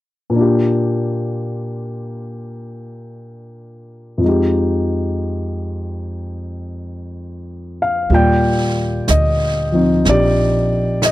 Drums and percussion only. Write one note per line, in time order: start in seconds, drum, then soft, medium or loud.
8.10 brush sweep soft
9.08 brush sweep soft
9.08 snare soft
9.08 hi-hat pedal soft
10.05 brush sweep soft
10.05 snare soft
11.02 brush sweep soft
11.02 snare soft
11.02 hi-hat pedal soft